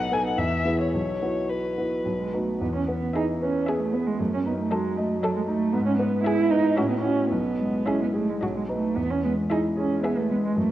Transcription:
0.00 0.41 B1 soft
0.00 0.12 B3 soft
0.00 0.12 D#4 soft
0.00 0.12 A4 soft
0.00 0.15 F#5 medium
0.12 0.36 B3 soft
0.12 0.36 D#4 soft
0.12 0.36 A4 soft
0.12 0.26 G#5 medium
0.26 0.40 F#5 medium
0.37 0.64 E2 soft
0.37 0.79 E5 medium
0.65 0.90 B3 soft
0.65 0.90 E4 soft
0.65 0.90 G#4 soft
0.81 0.93 C#5 soft
0.94 1.20 B1 soft
0.94 1.51 C#5 soft
1.22 1.73 B3 soft
1.22 1.73 E4 soft
1.22 1.74 F#4 soft
1.50 2.33 B4 soft
1.78 2.02 B3 soft
1.78 2.02 E4 soft
1.78 2.03 F#4 soft
2.04 2.32 B1 soft
2.04 2.17 F#3 soft
2.20 2.35 G#3 soft
2.33 2.60 A3 soft
2.33 2.58 B3 soft
2.33 2.58 D#4 soft
2.33 2.59 F#4 soft
2.61 4.16 E2 soft
2.61 2.74 B3 medium
2.75 2.88 C#4 soft
2.88 3.30 B3 soft
2.88 3.14 B3 soft
3.13 3.23 D#4 medium
3.13 3.56 E4 soft
3.13 3.54 G#4 soft
3.13 3.53 E5 soft
3.41 3.69 C#4 soft
3.41 3.83 B4 soft
3.66 3.80 B3 medium
3.66 4.07 G#4 soft
3.66 4.10 G#4 soft
3.66 4.06 E5 soft
3.81 3.94 A3 soft
3.93 4.08 B3 medium
3.93 4.20 B3 soft
4.07 4.20 G#3 medium
4.19 5.70 F#2 soft
4.19 4.32 A3 medium
4.34 4.39 C#4 soft
4.46 4.58 B3 soft
4.46 4.87 D#4 soft
4.60 4.74 A3 soft
4.71 5.13 F#3 soft
4.71 4.98 G#3 medium
4.71 5.10 A4 soft
4.71 5.10 D#5 soft
4.97 5.21 A3 medium
4.97 5.38 D#5 soft
5.22 5.35 F#3 medium
5.22 5.64 A4 soft
5.22 5.61 A4 soft
5.22 5.61 D#5 soft
5.36 5.46 G#3 medium
5.46 5.75 A3 medium
5.46 5.74 D#4 soft
5.73 6.74 G#2 soft
5.73 5.85 B3 medium
5.86 5.98 C#4 medium
5.98 6.24 B3 medium
5.98 6.40 B3 soft
6.24 6.52 E4 medium
6.24 6.67 E4 soft
6.24 6.64 G#4 medium
6.24 6.63 E5 medium
6.50 6.77 D#4 medium
6.50 6.78 B4 soft
6.76 7.30 A2 soft
6.76 6.89 C#4 medium
6.76 7.17 F#4 soft
6.76 7.17 E5 soft
6.89 7.01 B3 soft
7.01 7.30 C#4 medium
7.01 7.29 E4 soft
7.01 7.29 F#4 soft
7.31 8.39 B1 soft
7.31 7.87 B3 medium
7.59 8.04 G#3 soft
7.86 8.00 C#4 medium
7.86 8.31 E4 soft
7.86 8.28 G#4 soft
7.86 8.27 E5 soft
8.02 8.07 B3 medium
8.14 8.30 A3 soft
8.14 8.42 G#4 soft
8.29 8.40 G#3 soft
8.41 8.95 B1 soft
8.41 8.55 F#3 soft
8.41 8.83 F#4 soft
8.41 8.82 D#5 soft
8.56 8.62 G#3 soft
8.69 8.98 A3 medium
8.69 8.94 D#4 soft
8.69 8.94 B4 soft
8.96 10.52 E2 soft
8.96 9.12 B3 medium
9.10 9.24 C#4 medium
9.24 9.67 G#3 soft
9.24 9.32 B3 medium
9.50 9.59 D#4 medium
9.50 9.93 E4 soft
9.50 9.91 G#4 soft
9.50 9.90 E5 soft
9.77 10.03 C#4 soft
9.77 10.19 G#4 soft
10.03 10.20 B3 medium
10.03 10.43 G#4 soft
10.03 10.46 B4 soft
10.03 10.43 E5 soft
10.18 10.30 A3 medium
10.30 10.56 G#3 soft
10.30 10.36 B3 medium
10.45 10.57 G#3 medium
10.56 10.72 F#2 soft
10.56 10.70 A3 medium

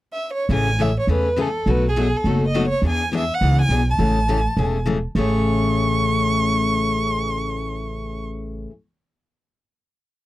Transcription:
0.13 0.30 E5 medium
0.33 0.50 C#5 medium
0.49 0.96 A1 medium
0.49 0.68 C#3 medium
0.49 0.69 E3 medium
0.49 0.69 A3 medium
0.49 0.69 C#4 medium
0.49 0.69 G#4 medium
0.53 0.83 G#5 medium
0.79 0.89 C#3 medium
0.79 0.90 E3 medium
0.79 0.90 A3 medium
0.79 0.90 C#4 medium
0.79 0.90 G#4 medium
0.79 0.97 E5 medium
0.99 1.09 C#5 medium
1.07 1.54 E2 medium
1.07 1.27 C#3 medium
1.07 1.27 E3 medium
1.07 1.27 A3 medium
1.07 1.27 C#4 medium
1.07 1.28 G#4 medium
1.13 1.43 B4 medium
1.36 1.47 C#3 medium
1.36 1.47 E3 medium
1.36 1.48 A3 medium
1.36 1.48 C#4 medium
1.36 1.48 G#4 medium
1.41 1.72 A4 medium
1.66 2.13 B1 medium
1.66 1.85 B2 medium
1.66 1.86 F#3 medium
1.66 1.86 A3 medium
1.66 1.86 D#4 medium
1.66 1.86 F#4 medium
1.70 1.85 B4 medium
1.88 2.18 G#4 medium
1.96 2.06 B2 medium
1.96 2.06 F#3 medium
1.96 2.06 A3 medium
1.96 2.07 D#4 medium
1.96 2.07 F#4 medium
2.16 2.43 A4 medium
2.24 2.71 F#1 medium
2.24 2.44 B2 medium
2.24 2.44 F#3 medium
2.24 2.44 A3 medium
2.24 2.44 D#4 medium
2.24 2.45 F#4 medium
2.48 2.64 D#5 medium
2.54 2.64 B2 medium
2.54 2.65 F#3 medium
2.54 2.65 A3 medium
2.54 2.65 D#4 medium
2.54 2.65 F#4 medium
2.68 2.84 C#5 medium
2.82 3.29 E2 medium
2.82 3.02 E3 medium
2.82 3.02 B3 medium
2.82 3.02 D4 medium
2.82 3.03 G#4 medium
2.89 3.13 G#5 medium
3.12 3.22 E3 medium
3.12 3.23 B3 medium
3.12 3.23 D4 medium
3.12 3.23 G#4 medium
3.17 3.36 E5 medium
3.34 3.61 F#5 medium
3.41 3.66 C#2 medium
3.41 3.60 E3 medium
3.41 3.61 B3 medium
3.41 3.61 D4 medium
3.41 3.61 G#4 medium
3.61 3.87 G#5 medium
3.69 3.94 B1 medium
3.69 3.81 E3 medium
3.69 3.81 B3 medium
3.69 3.81 D4 medium
3.69 3.81 G#4 medium
3.90 4.84 A5 medium
3.99 4.45 A1 medium
3.99 4.18 C#3 medium
3.99 4.18 E3 medium
3.99 4.18 A3 medium
3.99 4.19 C#4 medium
3.99 4.18 G#4 medium
4.28 4.39 C#3 medium
4.28 4.39 E3 medium
4.28 4.39 A3 medium
4.28 4.39 C#4 medium
4.28 4.40 G#4 medium
4.57 5.03 E1 medium
4.57 4.76 C#3 medium
4.57 4.77 E3 soft
4.57 4.77 A3 medium
4.57 4.77 C#4 medium
4.57 4.77 G#4 medium
4.86 4.96 C#3 medium
4.86 4.97 E3 medium
4.86 4.97 A3 medium
4.86 4.97 C#4 medium
4.86 4.97 G#4 medium
5.15 8.65 A1 medium
5.15 8.70 A2 medium
5.15 8.70 C#3 medium
5.15 8.71 E3 medium
5.15 8.71 A3 medium
5.15 8.72 C#4 medium
5.15 8.73 G#4 medium
5.15 8.25 C#6 medium

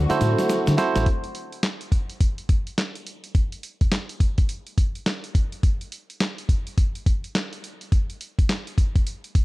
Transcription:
0.00 1.04 D3 medium
0.00 1.05 F#3 medium
0.00 1.05 A3 medium
0.00 1.05 C4 medium
0.00 1.05 F#4 medium
0.10 0.73 E4 medium
0.10 0.73 F#4 medium
0.10 0.74 A4 medium
0.10 0.74 C5 loud
0.10 muted fingered electric bass stroke soft
0.10 snare medium
0.10 closed hi-hat soft
0.10 shaker soft
0.21 0.34 A2 medium
0.21 snare medium
0.21 closed hi-hat medium
0.21 shaker soft
0.39 snare medium
0.39 closed hi-hat soft
0.39 shaker soft
0.49 snare medium
0.49 closed hi-hat medium
0.49 shaker medium
0.67 0.76 D3 medium
0.67 snare medium
0.67 closed hi-hat medium
0.67 shaker soft
0.77 1.06 E4 medium
0.77 1.06 F#4 medium
0.77 1.07 A4 medium
0.77 1.07 C5 loud
0.77 snare loud
0.77 closed hi-hat medium
0.77 shaker soft
0.95 1.04 A1 medium
0.95 snare medium
0.95 closed hi-hat medium
0.95 shaker soft
1.06 kick loud
1.06 closed hi-hat medium
1.24 closed hi-hat soft
1.35 closed hi-hat medium
1.52 closed hi-hat medium
1.63 snare loud
1.63 clap medium
1.63 closed hi-hat medium
1.81 closed hi-hat medium
1.92 kick medium
1.92 closed hi-hat medium
2.10 closed hi-hat soft
2.21 kick medium
2.21 closed hi-hat medium
2.38 closed hi-hat soft
2.49 kick loud
2.49 closed hi-hat medium
2.67 closed hi-hat soft
2.78 snare loud
2.78 clap medium
2.78 closed hi-hat medium
2.95 closed hi-hat medium
3.07 closed hi-hat medium
3.24 closed hi-hat soft
3.35 kick loud
3.35 closed hi-hat medium
3.52 closed hi-hat soft
3.63 closed hi-hat medium
3.81 kick medium
3.81 closed hi-hat medium
3.92 snare loud
3.92 clap medium
3.92 closed hi-hat medium
4.09 closed hi-hat medium
4.20 kick medium
4.20 closed hi-hat medium
4.38 kick medium
4.38 closed hi-hat soft
4.49 closed hi-hat medium
4.67 closed hi-hat soft
4.78 kick medium
4.78 closed hi-hat medium
4.95 closed hi-hat soft
5.06 snare loud
5.06 clap medium
5.06 closed hi-hat medium
5.24 closed hi-hat medium
5.35 kick medium
5.35 closed hi-hat medium
5.52 closed hi-hat soft
5.63 kick loud
5.63 closed hi-hat medium
5.81 closed hi-hat soft
5.92 closed hi-hat medium
6.10 closed hi-hat soft
6.20 snare loud
6.20 clap medium
6.20 closed hi-hat medium
6.38 closed hi-hat medium
6.49 kick medium
6.49 closed hi-hat medium
6.67 closed hi-hat soft
6.78 kick loud
6.78 closed hi-hat medium
6.95 closed hi-hat soft
7.06 kick loud
7.06 closed hi-hat medium
7.24 closed hi-hat soft
7.35 snare loud
7.35 clap medium
7.35 closed hi-hat medium
7.53 closed hi-hat medium
7.64 closed hi-hat medium
7.81 closed hi-hat soft
7.92 kick loud
7.92 closed hi-hat medium
8.10 closed hi-hat soft
8.21 closed hi-hat medium
8.39 kick medium
8.39 closed hi-hat medium
8.49 snare loud
8.49 clap medium
8.49 closed hi-hat medium
8.67 closed hi-hat soft
8.78 kick medium
8.78 closed hi-hat medium
8.96 kick medium
8.96 closed hi-hat soft
9.07 closed hi-hat medium
9.24 closed hi-hat soft
9.35 kick loud
9.35 closed hi-hat medium

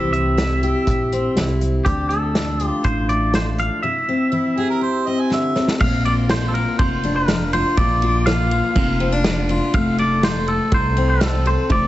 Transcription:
0.00 0.71 C2 medium
0.00 0.32 C3 medium
0.00 0.36 E3 medium
0.00 0.12 C4 medium
0.00 0.37 E4 medium
0.00 0.62 G4 medium
0.00 0.12 E5 medium
0.13 1.12 C4 soft
0.13 1.57 E5 medium
0.13 closed hi-hat medium
0.38 0.82 E3 medium
0.38 1.37 E4 medium
0.38 snare loud
0.38 closed hi-hat medium
0.63 1.83 G4 medium
0.63 closed hi-hat medium
0.87 1.29 A#1 medium
0.87 1.31 G2 medium
0.87 kick loud
0.87 closed hi-hat medium
1.12 1.83 C4 medium
1.12 closed hi-hat medium
1.35 1.78 C2 medium
1.35 1.81 E3 medium
1.35 1.83 E4 medium
1.35 snare medium
1.35 closed hi-hat medium
1.61 closed hi-hat medium
1.85 2.69 D2 medium
1.85 2.31 D3 medium
1.85 2.35 D4 medium
1.85 2.09 G4 medium
1.85 kick medium
1.85 closed hi-hat medium
2.09 3.08 A3 medium
2.09 2.66 A4 medium
2.09 closed hi-hat medium
2.35 2.80 F3 medium
2.35 3.34 D4 medium
2.35 snare loud
2.35 closed hi-hat medium
2.60 3.84 F4 medium
2.60 closed hi-hat medium
2.66 2.86 G4 medium
2.84 3.68 A1 medium
2.84 3.29 A2 medium
2.84 3.09 C5 medium
2.84 kick loud
2.84 closed hi-hat medium
3.09 3.80 A3 medium
3.09 3.35 D5 medium
3.09 closed hi-hat medium
3.34 3.78 F3 medium
3.34 3.81 D4 medium
3.34 3.42 C5 medium
3.34 snare loud
3.34 closed hi-hat medium
3.58 3.82 F5 medium
3.58 closed hi-hat medium
3.83 4.28 C3 medium
3.83 4.31 E4 medium
3.83 5.27 E5 medium
4.09 5.06 C4 medium
4.32 4.77 E3 medium
4.32 5.77 E4 medium
4.57 5.78 G4 medium
4.57 4.68 G#4 medium
4.70 4.81 A#4 medium
4.81 5.26 G2 medium
4.81 5.08 C5 medium
5.07 5.78 C4 soft
5.07 5.21 D#5 medium
5.20 5.31 G#5 medium
5.30 5.55 D3 medium
5.30 5.68 E5 medium
5.30 snare soft
5.56 5.80 C3 medium
5.56 snare medium
5.68 snare medium
5.80 6.63 A#1 medium
5.80 6.25 A#2 medium
5.80 7.75 A#3 medium
5.80 6.05 F5 loud
5.80 kick loud
5.80 crash loud
6.05 7.54 F4 medium
6.05 6.12 D5 medium
6.05 ride medium
6.29 6.74 F3 medium
6.29 6.48 C5 loud
6.29 snare loud
6.29 ride medium
6.48 6.54 A4 medium
6.54 6.79 A#4 medium
6.54 ride medium
6.79 7.62 F1 medium
6.79 7.23 F2 medium
6.79 7.15 C5 medium
6.79 kick loud
6.79 ride medium
7.03 7.75 D4 medium
7.03 ride medium
7.16 7.53 A#4 medium
7.28 7.73 F3 medium
7.28 snare loud
7.28 ride medium
7.53 8.03 F4 medium
7.53 7.76 C5 medium
7.53 ride medium
7.77 8.60 A#1 medium
7.77 8.22 A#2 medium
7.77 9.72 A#3 medium
7.77 8.23 D5 medium
7.77 kick loud
7.77 ride medium
8.02 9.50 F4 medium
8.02 ride medium
8.26 8.71 F3 medium
8.26 9.45 F5 medium
8.26 snare loud
8.26 ride medium
8.51 ride medium
8.75 9.58 F1 medium
8.75 9.20 F2 medium
8.75 kick loud
8.75 ride medium
9.00 9.12 C4 medium
9.00 ride medium
9.12 9.74 D4 medium
9.24 9.69 F3 medium
9.24 snare loud
9.24 ride medium
9.49 9.99 F4 medium
9.49 ride medium
9.74 10.57 F1 medium
9.74 10.18 F2 medium
9.74 11.68 A3 medium
9.74 9.99 F5 loud
9.74 kick loud
9.74 ride medium
9.98 11.44 A4 medium
9.98 10.22 D5 loud
9.98 ride medium
10.23 10.67 F3 medium
10.23 10.48 C5 loud
10.23 snare loud
10.23 ride medium
10.48 10.73 A4 medium
10.48 ride medium
10.72 11.55 C2 medium
10.72 11.16 C3 medium
10.72 11.09 C5 medium
10.72 kick loud
10.72 ride medium
10.97 11.88 C4 medium
10.97 ride medium
11.10 11.47 A4 medium
11.21 11.65 F3 medium
11.21 snare loud
11.21 ride medium
11.46 11.67 A4 medium
11.46 11.72 C5 medium
11.46 ride medium
11.70 11.88 F1 medium
11.70 11.88 F2 medium
11.70 11.88 A3 medium
11.70 11.88 D5 medium
11.70 kick loud
11.70 ride medium

